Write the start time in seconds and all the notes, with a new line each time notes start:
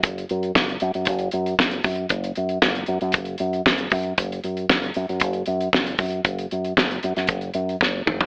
0.03 F#1, kick, closed hi-hat
0.18 closed hi-hat
0.29 F#2, closed hi-hat
0.43 closed hi-hat
0.55 F#1, kick, snare
0.69 closed hi-hat
0.80 F#2, closed hi-hat
0.94 F#2, closed hi-hat
1.05 F#1, kick, closed hi-hat
1.19 closed hi-hat
1.31 F#2, closed hi-hat
1.46 closed hi-hat
1.59 F#1, kick, snare
1.71 closed hi-hat
1.84 F#2, kick, open hi-hat
1.96 closed hi-hat
2.09 F#1, kick, closed hi-hat
2.24 closed hi-hat
2.35 F#2, closed hi-hat
2.49 closed hi-hat
2.62 F#1, kick, snare
2.75 closed hi-hat
2.86 F#2, closed hi-hat
3.01 F#2, closed hi-hat
3.12 kick, closed hi-hat
3.25 closed hi-hat
3.38 F#2, closed hi-hat
3.53 closed hi-hat
3.66 F#1, kick, snare
3.78 closed hi-hat
3.90 F#2, kick, open hi-hat
4.03 closed hi-hat
4.18 F#1, kick, closed hi-hat
4.32 closed hi-hat
4.44 F#2, closed hi-hat
4.57 closed hi-hat
4.69 F#1, kick, snare
4.83 closed hi-hat
4.94 F#2, closed hi-hat
5.09 F#2, closed hi-hat
5.20 F#1, kick, closed hi-hat
5.33 closed hi-hat
5.46 F#2, closed hi-hat
5.61 closed hi-hat
5.73 F#1, kick, snare
5.86 closed hi-hat
5.98 F#2, kick, open hi-hat
6.11 closed hi-hat
6.25 F#1, kick, closed hi-hat
6.38 closed hi-hat
6.51 F#2, closed hi-hat
6.65 closed hi-hat
6.77 F#1, kick, snare
6.91 closed hi-hat
7.03 F#2, closed hi-hat
7.16 F#2, snare, closed hi-hat
7.27 F#1, kick, closed hi-hat
7.41 closed hi-hat
7.54 F#2, closed hi-hat
7.69 closed hi-hat
7.81 F#1, kick, snare
8.06 F1, mid tom
8.21 floor tom